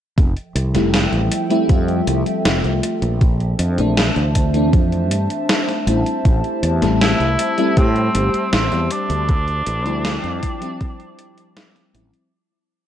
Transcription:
0.18 0.33 F1 medium
0.18 3.19 F3 medium
0.18 3.19 A4 medium
0.18 3.19 E5 medium
0.18 3.19 G5 medium
0.18 kick loud
0.18 closed hi-hat medium
0.37 closed hi-hat soft
0.55 0.76 C2 medium
0.55 closed hi-hat loud
0.74 1.05 F1 loud
0.74 1.46 G3 medium
0.74 1.46 A3 medium
0.74 1.46 C4 medium
0.74 1.46 E4 medium
0.74 snare soft
0.74 closed hi-hat medium
0.94 snare loud
0.94 closed hi-hat medium
1.12 1.28 A1 medium
1.12 closed hi-hat soft
1.32 closed hi-hat loud
1.50 1.66 G3 medium
1.50 1.66 A3 medium
1.50 1.67 C4 medium
1.50 1.67 E4 loud
1.50 closed hi-hat medium
1.68 2.00 F2 medium
1.68 3.18 G3 medium
1.68 3.19 A3 medium
1.68 3.19 C4 medium
1.68 3.20 F4 loud
1.68 kick loud
1.68 closed hi-hat medium
1.88 closed hi-hat soft
2.07 2.23 C2 medium
2.07 closed hi-hat medium
2.26 closed hi-hat soft
2.45 2.61 F1 medium
2.45 snare loud
2.45 closed hi-hat medium
2.64 2.80 C2 medium
2.64 closed hi-hat soft
2.83 closed hi-hat medium
3.02 3.53 A#1 loud
3.02 closed hi-hat medium
3.21 5.85 D4 medium
3.21 9.25 C5 medium
3.21 12.29 E5 medium
3.21 9.25 A5 loud
3.21 kick loud
3.21 closed hi-hat medium
3.40 closed hi-hat soft
3.59 3.80 F2 medium
3.59 closed hi-hat loud
3.78 4.09 A#1 medium
3.78 4.49 E3 medium
3.78 4.50 A3 medium
3.78 4.50 C4 medium
3.78 4.50 D4 medium
3.78 closed hi-hat medium
3.97 snare loud
3.97 closed hi-hat medium
4.16 4.73 D2 medium
4.16 closed hi-hat soft
4.35 kick medium
4.35 closed hi-hat loud
4.53 5.82 E3 medium
4.53 5.83 A3 medium
4.53 5.83 C4 medium
4.53 5.84 D4 medium
4.53 closed hi-hat medium
4.73 5.11 F2 medium
4.73 kick loud
4.73 closed hi-hat medium
4.92 closed hi-hat soft
5.11 5.27 G2 medium
5.11 closed hi-hat loud
5.30 closed hi-hat medium
5.49 snare loud
5.49 closed hi-hat medium
5.69 snare soft
5.69 closed hi-hat soft
5.86 6.02 A1 loud
5.86 6.77 G3 medium
5.86 6.78 A3 medium
5.86 6.78 C4 medium
5.86 6.79 E4 medium
5.86 9.26 G4 medium
5.86 closed hi-hat loud
6.06 closed hi-hat medium
6.25 6.41 A1 medium
6.25 kick loud
6.25 closed hi-hat soft
6.44 closed hi-hat soft
6.63 6.83 E2 medium
6.63 closed hi-hat medium
6.82 7.13 A1 medium
6.82 7.53 G3 medium
6.82 7.53 A3 medium
6.82 7.54 C4 medium
6.82 7.54 E4 loud
6.82 snare soft
6.82 closed hi-hat medium
7.01 7.73 E4 loud
7.01 snare loud
7.01 closed hi-hat medium
7.20 7.35 C2 medium
7.20 closed hi-hat soft
7.39 closed hi-hat loud
7.58 7.74 G3 medium
7.58 7.74 A3 medium
7.58 7.75 C4 medium
7.58 7.75 E4 loud
7.58 closed hi-hat medium
7.76 8.08 A2 medium
7.76 9.26 G3 medium
7.76 9.27 A3 medium
7.76 8.49 C4 loud
7.76 9.27 C4 medium
7.76 9.28 G4 loud
7.76 kick loud
7.76 closed hi-hat medium
7.96 closed hi-hat soft
8.15 8.30 G1 loud
8.15 closed hi-hat medium
8.34 closed hi-hat soft
8.53 8.68 A1 medium
8.53 8.93 C4 medium
8.53 snare loud
8.53 closed hi-hat medium
8.72 8.87 E2 medium
8.72 closed hi-hat soft
8.91 11.57 D4 loud
8.91 closed hi-hat medium
9.10 9.61 D2 loud
9.10 closed hi-hat medium
9.29 12.30 F3 medium
9.29 12.30 C5 medium
9.29 12.30 G5 loud
9.29 kick loud
9.29 closed hi-hat soft
9.48 closed hi-hat soft
9.66 9.86 A1 medium
9.66 closed hi-hat medium
9.85 10.17 D2 medium
9.85 10.57 F3 medium
9.85 10.57 G3 medium
9.85 10.57 C4 medium
9.85 10.58 E4 medium
9.85 closed hi-hat soft
10.05 snare loud
10.05 closed hi-hat medium
10.24 10.39 F2 medium
10.24 closed hi-hat soft
10.43 kick medium
10.43 closed hi-hat medium
10.60 11.89 F3 medium
10.60 11.90 G3 medium
10.60 11.90 C4 medium
10.60 11.91 E4 medium
10.60 closed hi-hat medium
10.81 kick loud
10.81 closed hi-hat soft
11.00 closed hi-hat soft
11.19 closed hi-hat medium
11.38 closed hi-hat soft
11.57 snare loud
11.57 closed hi-hat medium
11.76 snare soft
11.76 closed hi-hat soft
11.94 12.10 A1 medium
11.94 12.30 F3 medium
11.94 12.30 G3 medium
11.94 12.30 C4 medium
11.94 12.31 E4 medium
11.94 closed hi-hat medium
12.14 closed hi-hat medium

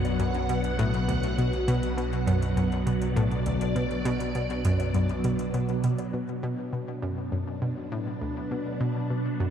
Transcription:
0.00 6.10 B1 medium
0.00 0.18 F#2 loud
0.00 6.13 B2 medium
0.00 6.13 F#3 medium
0.00 6.14 D4 medium
0.00 6.13 B4 medium
0.00 2.77 F#5 medium
0.05 closed hi-hat medium
0.05 low woodblock medium
0.19 0.39 F#2 medium
0.19 closed hi-hat soft
0.34 closed hi-hat soft
0.49 0.61 B2 medium
0.49 closed hi-hat medium
0.64 closed hi-hat medium
0.79 1.07 A2 loud
0.79 closed hi-hat medium
0.94 closed hi-hat soft
1.08 1.28 D2 medium
1.08 closed hi-hat medium
1.23 closed hi-hat medium
1.38 1.50 B2 medium
1.38 closed hi-hat medium
1.53 closed hi-hat soft
1.68 1.79 B2 loud
1.68 closed hi-hat medium
1.83 closed hi-hat medium
1.98 2.17 B2 medium
1.98 closed hi-hat soft
2.13 closed hi-hat soft
2.27 2.55 F#2 loud
2.27 closed hi-hat loud
2.42 closed hi-hat medium
2.57 2.76 F#2 medium
2.57 closed hi-hat medium
2.72 6.16 D5 medium
2.72 closed hi-hat soft
2.87 2.98 B2 medium
2.87 closed hi-hat medium
3.02 closed hi-hat soft
3.16 3.45 A2 loud
3.16 closed hi-hat soft
3.31 closed hi-hat soft
3.46 3.65 D2 medium
3.46 closed hi-hat medium
3.61 closed hi-hat medium
3.76 3.87 B2 medium
3.76 closed hi-hat soft
3.91 closed hi-hat soft
4.05 4.17 B2 loud
4.05 closed hi-hat medium
4.20 closed hi-hat medium
4.35 4.54 B2 medium
4.35 closed hi-hat soft
4.50 closed hi-hat soft
4.65 4.93 F#2 loud
4.65 closed hi-hat loud
4.80 closed hi-hat medium
4.80 low woodblock medium
4.94 5.14 F#2 medium
4.94 closed hi-hat soft
5.09 closed hi-hat soft
5.24 5.53 B2 medium
5.24 closed hi-hat medium
5.39 closed hi-hat medium
5.54 5.73 B2 medium
5.54 closed hi-hat soft
5.69 closed hi-hat soft
5.84 5.95 B2 medium
5.84 closed hi-hat medium
5.98 closed hi-hat medium
5.98 low woodblock medium
6.13 6.25 B2 medium
6.13 9.50 B2 medium
6.31 9.50 F#3 medium
6.31 9.50 D4 medium
6.43 6.55 B2 loud
6.73 6.92 B2 medium
7.02 7.31 F#2 medium
7.32 7.51 F#2 medium
7.54 9.50 B4 medium
7.62 7.73 B2 medium
7.92 8.20 A2 medium
8.07 9.50 F#5 medium
8.21 8.41 D2 medium
8.51 8.63 B2 medium
8.81 8.92 B2 medium
9.10 9.30 B2 medium
9.40 9.50 F#2 medium

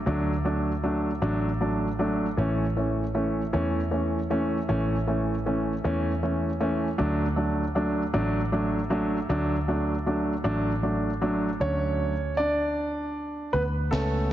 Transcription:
0.06 1.18 D2 medium
0.06 0.32 F#3 medium
0.06 0.33 A3 medium
0.06 0.33 D4 medium
0.45 0.71 F#3 soft
0.45 0.71 A3 soft
0.45 0.71 D4 medium
0.83 1.10 F#3 medium
0.83 1.10 A3 medium
0.83 1.10 D4 medium
1.22 2.34 A1 medium
1.22 1.48 F#3 medium
1.22 1.48 A3 medium
1.22 1.48 D4 medium
1.60 1.87 F#3 medium
1.60 1.87 A3 soft
1.60 1.87 D4 medium
1.99 2.25 F#3 medium
1.99 2.25 A3 medium
1.99 2.26 D4 medium
2.37 3.50 A1 medium
2.37 2.64 E3 medium
2.37 2.64 A3 medium
2.37 2.64 C#4 medium
2.76 3.03 E3 soft
2.76 3.03 A3 soft
2.76 3.03 C#4 medium
3.14 3.41 E3 soft
3.14 3.41 A3 soft
3.14 3.41 C#4 medium
3.53 4.66 E2 medium
3.53 3.80 E3 medium
3.53 3.80 A3 medium
3.53 3.80 C#4 medium
3.91 4.18 E3 medium
3.91 4.18 A3 soft
3.91 4.18 C#4 medium
4.30 4.57 E3 medium
4.30 4.57 A3 medium
4.30 4.57 C#4 medium
4.69 5.81 A1 medium
4.69 4.95 E3 medium
4.69 4.95 A3 medium
4.69 4.95 C#4 medium
5.07 5.34 E3 medium
5.07 5.34 A3 soft
5.07 5.34 C#4 medium
5.46 5.72 E3 medium
5.46 5.72 A3 soft
5.46 5.72 C#4 medium
5.84 6.96 E2 medium
5.84 6.10 E3 medium
5.84 6.11 A3 medium
5.84 6.11 C#4 medium
6.23 6.49 E3 medium
6.23 6.49 A3 medium
6.23 6.49 C#4 medium
6.60 6.87 E3 medium
6.60 6.87 A3 medium
6.60 6.87 C#4 medium
6.98 8.11 D2 medium
6.98 7.25 F#3 medium
6.98 7.25 A3 medium
6.98 7.25 D4 medium
7.36 7.63 F#3 medium
7.36 7.63 A3 soft
7.36 7.63 D4 medium
7.75 8.02 F#3 medium
7.75 8.02 A3 medium
7.75 8.02 D4 medium
8.13 9.25 A1 medium
8.13 8.40 F#3 medium
8.13 8.40 A3 medium
8.13 8.40 D4 medium
8.52 8.78 F#3 medium
8.52 8.78 A3 medium
8.52 8.79 D4 medium
8.90 9.16 F#3 medium
8.90 9.17 A3 medium
8.90 9.17 D4 medium
9.29 10.41 D2 medium
9.29 9.55 F#3 medium
9.29 9.55 A3 medium
9.29 9.55 D4 medium
9.68 9.94 F#3 medium
9.68 9.94 A3 soft
9.68 9.94 D4 medium
10.06 10.32 F#3 soft
10.06 10.32 A3 soft
10.06 10.33 D4 medium
10.44 11.57 A1 medium
10.44 10.70 F#3 medium
10.44 10.71 A3 medium
10.44 10.71 D4 medium
10.82 11.09 F#3 soft
10.82 11.09 A3 soft
10.82 11.09 D4 medium
11.21 11.48 F#3 medium
11.21 11.48 A3 medium
11.21 11.48 D4 medium
11.60 13.50 D2 medium
11.60 12.12 F#3 soft
11.60 12.12 A3 soft
11.60 12.34 C#4 medium
11.60 12.12 D4 soft
11.60 12.34 C#5 medium
12.37 13.50 D4 medium
12.37 13.57 D5 medium
13.53 13.90 D2 medium
13.53 13.63 B3 medium
13.53 13.62 B4 medium
13.91 14.33 C#2 medium
13.91 14.33 A3 medium
13.91 14.33 B3 soft
13.91 14.33 C#4 medium
13.91 14.33 A4 medium
13.91 snare soft

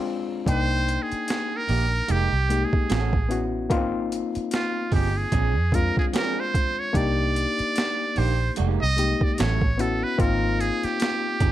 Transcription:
0.00 0.48 G#3 loud
0.00 0.48 C4 loud
0.00 0.47 D4 loud
0.00 0.47 F4 loud
0.46 0.97 C2 medium
0.46 1.69 A#3 medium
0.46 1.70 D4 medium
0.46 1.70 D#4 medium
0.46 1.04 C5 medium
0.46 1.70 G5 medium
0.46 kick loud
0.46 closed hi-hat medium
0.89 closed hi-hat medium
1.02 1.58 G#4 medium
1.12 muted fingered electric bass stroke soft
1.12 closed hi-hat soft
1.28 snare medium
1.28 closed hi-hat medium
1.56 2.13 A#4 medium
1.68 2.00 A#1 medium
1.68 1.84 D#3 medium
1.68 1.85 A#3 medium
1.68 1.85 D4 medium
1.68 1.85 G4 medium
1.68 open hi-hat soft
2.08 2.27 F1 medium
2.08 2.29 G#3 medium
2.08 2.29 A#3 medium
2.08 2.30 D#4 medium
2.08 2.30 G4 medium
2.08 2.66 G4 medium
2.08 closed hi-hat medium
2.32 2.64 C2 medium
2.49 2.89 G#3 medium
2.49 2.90 A#3 medium
2.49 2.90 D#4 medium
2.49 2.91 G4 medium
2.49 closed hi-hat medium
2.65 3.44 G#4 medium
2.73 kick medium
2.90 3.72 A1 medium
2.90 3.13 A3 medium
2.90 3.13 C#4 medium
2.90 3.13 F#4 medium
2.90 3.13 A4 medium
2.90 snare medium
2.90 closed hi-hat medium
3.13 kick medium
3.29 3.61 B3 medium
3.29 3.62 C#4 medium
3.29 3.62 E4 medium
3.29 3.63 F#4 medium
3.29 closed hi-hat medium
3.70 4.21 G#1 loud
3.70 4.93 A#3 loud
3.70 3.78 B3 medium
3.70 4.94 D#4 loud
3.70 4.94 F4 loud
3.70 kick loud
3.70 closed hi-hat medium
3.77 4.97 C4 loud
4.12 closed hi-hat medium
4.35 muted fingered electric bass stroke soft
4.35 closed hi-hat soft
4.51 4.90 F4 medium
4.51 snare medium
4.51 closed hi-hat medium
4.91 5.24 G1 medium
4.91 5.08 F3 medium
4.91 5.09 C4 medium
4.91 5.09 D#4 medium
4.91 5.19 G4 medium
4.91 5.09 G#4 medium
4.91 kick medium
4.91 open hi-hat soft
5.17 5.76 G#4 medium
5.32 5.59 A#1 medium
5.32 5.53 F3 medium
5.32 5.54 C4 medium
5.32 5.54 D4 medium
5.32 5.54 G#4 medium
5.32 kick medium
5.32 closed hi-hat medium
5.59 5.89 F2 medium
5.72 6.67 G#3 medium
5.72 6.67 C4 medium
5.72 6.68 D4 medium
5.72 6.68 F4 medium
5.72 5.97 A#4 medium
5.72 kick medium
5.72 closed hi-hat medium
5.97 6.06 G#4 medium
5.97 kick medium
6.13 6.37 F3 medium
6.13 6.37 C4 medium
6.13 6.37 D4 medium
6.13 6.37 G#4 medium
6.13 6.41 A#4 medium
6.13 snare loud
6.13 closed hi-hat medium
6.40 6.81 C5 medium
6.55 kick medium
6.55 closed hi-hat medium
6.79 6.98 C#5 medium
6.93 7.45 C2 medium
6.93 8.17 A#3 medium
6.93 8.17 D4 medium
6.93 8.18 D#4 medium
6.93 8.18 G4 loud
6.93 8.20 D5 loud
6.93 kick loud
6.93 closed hi-hat medium
7.36 closed hi-hat medium
7.59 muted fingered electric bass stroke soft
7.59 closed hi-hat soft
7.76 snare medium
7.76 closed hi-hat medium
8.16 8.49 A#1 medium
8.16 8.33 D#3 medium
8.16 8.33 A#3 medium
8.16 8.34 D4 medium
8.16 8.34 G4 medium
8.16 8.52 C5 medium
8.16 open hi-hat soft
8.56 8.77 F1 medium
8.56 8.80 G#3 medium
8.56 8.80 A#3 medium
8.56 8.81 D#4 loud
8.56 8.81 G4 medium
8.56 closed hi-hat medium
8.82 9.13 C2 medium
8.82 9.25 D#5 loud
8.97 9.38 G#3 medium
8.97 9.38 A#3 medium
8.97 9.38 D#4 medium
8.97 9.39 G4 medium
8.97 closed hi-hat medium
9.21 9.36 D5 medium
9.21 kick medium
9.34 9.42 D#5 medium
9.34 closed hi-hat medium
9.39 10.03 A1 loud
9.39 9.59 F#3 medium
9.39 9.60 C#4 medium
9.39 9.60 E4 medium
9.39 9.60 A4 medium
9.39 9.82 C#5 medium
9.39 snare loud
9.61 kick medium
9.78 10.10 B3 medium
9.78 10.11 C#4 medium
9.78 10.11 E4 medium
9.78 10.12 F#4 medium
9.78 10.05 A4 medium
9.78 closed hi-hat medium
10.03 10.21 B4 medium
10.18 10.70 G#1 loud
10.18 11.42 A#3 medium
10.18 11.42 C4 medium
10.18 11.42 D#4 medium
10.18 11.42 F4 loud
10.18 10.62 A#4 medium
10.18 kick loud
10.18 closed hi-hat medium
10.61 10.86 G#4 loud
10.61 closed hi-hat medium
10.83 11.52 G4 medium
10.83 muted fingered electric bass stroke soft
10.83 snare soft
10.83 closed hi-hat soft
11.00 snare medium
11.00 closed hi-hat medium
11.40 11.52 G1 medium
11.40 11.52 F3 medium
11.40 11.52 C4 medium
11.40 11.52 D#4 medium
11.40 11.52 G#4 medium
11.40 kick medium
11.40 closed hi-hat medium

